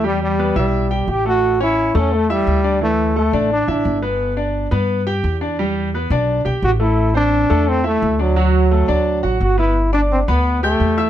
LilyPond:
<<
  \new Staff \with { instrumentName = "Grand piano" } { \time 4/4 \key g \major \tempo 4 = 173 <g g'>4 <b b'>8 <e' e''>4 <g' g''>4 <a a'>8~ | <a a'>8 <cis' cis''>4 <a a'>4 <e' e''>4 <d' d''>8 | <e e'>4 <a a'>8 <d' d''>4 <e' e''>4 <b b'>8~ | <b b'>8 <d' d''>4 <b b'>4 <g' g''>4 <d' d''>8 |
<g g'>4 <b b'>8 <d' d''>4 <g' g''>4 <a a'>8~ | <a a'>8 <c' c''>4 <a a'>4 <e' e''>4 <d' d''>8 | <fis fis'>4 <a a'>8 <d' d''>4 <fis' fis''>4 <b b'>8 | r8 <d' d'' d'''>4 <b b' b''>4 <g' g'' g'''>4 <e' e'' e'''>8 | }
  \new Staff \with { instrumentName = "Trombone" } { \time 4/4 \key g \major g8 g4 g4. g'8 fis'8~ | fis'8 e'4 cis'8 a8 g4. | a4 a4 d'8 d'4 r8 | r1 |
r2. fis'8 e'8~ | e'8 d'4. c'8 a4 fis8~ | fis2. fis'8 e'8~ | e'8 d'8 c'8 b4 a4. | }
  \new Staff \with { instrumentName = "Upright bass" } { \clef bass \time 4/4 \key g \major e,4. b,,4. a,,4~ | a,,4. e,4. d,4~ | d,4. a,,4 a,,8 g,,4~ | g,,4. g,4. e,4~ |
e,4. b,,4 b,,8 a,,4~ | a,,4. e,4. d,4~ | d,4. d,4 a,,8 g,,4~ | g,,4. d,4. e,4 | }
>>